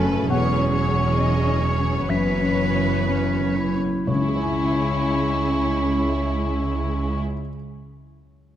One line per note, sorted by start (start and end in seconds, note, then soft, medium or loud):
0.00 0.30 F#1 medium
0.00 0.26 F#2 soft
0.00 0.30 F#2 medium
0.00 0.33 F#2 medium
0.00 0.19 C#3 soft
0.00 0.29 A3 soft
0.00 0.02 C#4 soft
0.00 0.27 C#4 medium
0.00 0.29 C#4 soft
0.00 0.72 C#4 soft
0.00 0.30 C#4 soft
0.00 0.30 A4 soft
0.00 0.31 A4 soft
0.00 0.33 A4 soft
0.00 0.30 B4 soft
0.00 0.32 C#5 soft
0.00 1.16 C#5 soft
0.00 0.27 G#5 medium
0.00 0.33 A5 medium
0.27 2.06 E1 soft
0.27 2.13 E2 soft
0.27 2.06 E2 soft
0.27 2.08 F#3 medium
0.27 1.94 C#4 soft
0.27 2.06 C#4 soft
0.27 2.06 G#4 soft
0.27 0.72 B4 soft
0.27 0.72 C#5 soft
0.27 2.05 F#5 medium
0.27 2.11 C#6 soft
0.59 1.05 C#4 soft
0.72 2.56 C#4 soft
0.72 1.15 C#5 soft
0.72 2.08 C#5 soft
0.88 1.35 C#5 soft
1.17 1.65 C#4 soft
1.17 3.05 C#5 soft
1.17 1.63 D#5 soft
1.47 1.97 E3 soft
1.62 2.10 C#5 soft
1.62 2.13 G#5 soft
1.78 2.09 C#4 soft
2.08 3.78 F#1 soft
2.08 4.12 F#2 soft
2.08 4.04 F#2 soft
2.08 3.78 F#2 soft
2.08 3.54 E3 soft
2.08 3.82 B3 soft
2.08 2.96 C#4 soft
2.08 3.82 B4 soft
2.08 3.58 B4 soft
2.08 3.78 C#5 soft
2.08 3.53 E5 soft
2.08 3.65 B6 soft
2.41 2.94 C#4 soft
2.57 4.14 C#4 soft
2.75 3.27 C#5 soft
3.06 3.61 C#4 soft
3.06 3.59 C#4 soft
3.06 4.35 C#5 soft
3.40 3.95 C#3 soft
3.56 4.08 E4 soft
3.56 4.12 B5 soft
3.74 4.08 C#4 soft
4.07 7.19 C#2 soft
4.07 7.20 C#2 soft
4.07 7.98 C#3 soft
4.07 7.21 G#3 soft
4.07 7.20 C#4 soft
4.07 7.21 C#4 soft
4.07 7.21 E4 soft
4.07 7.22 E4 soft
4.07 4.34 C#5 soft
4.07 7.21 C#6 soft
4.15 7.26 C#3 soft
4.15 7.27 C#4 soft
4.21 7.33 E4 soft
4.28 7.40 G#4 soft
4.36 7.47 C#5 soft
4.36 7.48 C#5 soft
4.42 7.54 G#5 soft